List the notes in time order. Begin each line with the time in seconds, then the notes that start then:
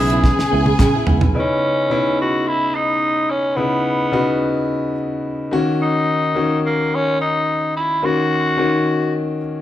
Already playing: B1 C#3 G#3 B3 C#4 E4 G#4 E5
0.10 B3 E4 G#4, closed hi-hat
0.24 G#4 G#5, kick, snare
0.39 muted clean electric guitar stroke, snare
0.52 C#2 B3 E4 G#4
0.66 muted clean electric guitar stroke, high tom
0.79 C#3, muted clean electric guitar stroke, kick, clap, mid tom
0.94 B3 E4 G#4
1.06 C#2 B3 E4 G#4, floor tom
1.21 B1, muted clean electric guitar stroke, floor tom
1.34 C#3 B3 D#4 E4
1.39 C#4
1.90 C#3 B3 D#4 E4
2.21 F#4
2.48 E4
2.75 D#4
3.30 C#4
3.56 C#3 B3 D#4 E4
4.12 C#3 B3 D#4 F#4
5.51 D#3 A#3 C#4 F#4
5.82 D#4
6.35 D#3 A#3 C#4 F#4
6.66 A#3
6.95 C#4
7.21 D#4
7.76 E4
8.02 D#3 A#3 C#4 F#4
8.57 D#3 A#3 C#4 F#4